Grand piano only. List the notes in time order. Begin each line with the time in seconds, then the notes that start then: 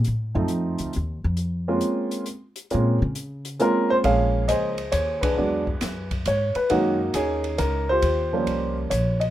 0.35 F3 A3 C4 D#4 F4
1.68 G#3 A#3 C4 C#4 F4
2.71 G#3 A#3 C4 C#4 F4
3.60 G#3 A#3 C4 C#4 F4 A#4
3.90 C5
4.04 F3 G#3 A#3 C#4 G#4 C#5 F5
4.48 G#4 C5 D#5
4.92 C#5
5.21 D4 G#4 B4
5.37 F#3 G#3 B3 D4
6.28 C#5
6.56 B4
6.70 D#3 G#3 A#3 C#4 D#4 F#4
7.15 C#4 D#4 G#4
7.58 A#4
7.89 F4 G4 C5
8.33 F3 G3 A#3 C#4
8.90 C#5
9.20 D#5